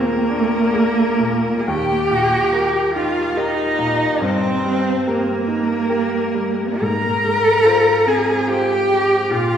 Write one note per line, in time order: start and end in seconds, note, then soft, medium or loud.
0.00 1.61 D#2 medium
0.00 0.13 A#2 medium
0.00 1.61 A#3 loud
0.00 0.26 G#4 medium
0.00 0.26 A#4 medium
0.00 1.68 A#4 loud
0.30 1.00 D4 medium
0.74 1.16 G#4 medium
0.74 1.16 A#4 medium
1.19 1.66 A#2 medium
1.59 1.68 G#4 medium
1.66 4.18 D#2 medium
1.66 2.94 G4 loud
1.66 2.95 G5 loud
2.11 2.78 A#2 medium
2.53 2.91 G4 medium
2.53 2.91 A#4 medium
2.94 3.62 D#4 medium
2.94 3.38 F4 loud
2.94 3.39 F5 medium
3.36 4.23 D#4 loud
3.36 3.74 G4 medium
3.36 3.75 A#4 medium
3.36 4.22 D#5 medium
3.79 4.22 A#2 medium
4.21 6.77 G2 medium
4.21 5.09 C4 loud
4.21 5.10 C5 loud
4.65 5.31 G3 medium
5.07 6.83 A#3 medium
5.07 5.44 G4 medium
5.07 5.44 A#4 medium
5.07 6.80 A#4 medium
5.48 6.16 D#4 medium
5.89 6.30 G4 medium
5.89 6.31 A#4 medium
6.34 6.81 G3 medium
6.81 9.26 G#2 medium
6.81 8.09 A#4 loud
6.81 8.09 A#5 loud
7.24 7.89 G#3 medium
7.65 8.02 F4 medium
7.65 8.02 C5 medium
8.07 8.72 C4 medium
8.07 8.50 G#4 loud
8.07 8.49 G#5 medium
8.47 8.85 F4 medium
8.47 9.32 G4 loud
8.47 8.85 C5 medium
8.47 9.31 G5 medium
8.90 9.31 G#3 medium
9.29 9.57 A#2 medium
9.29 9.57 F4 loud
9.29 9.57 F5 medium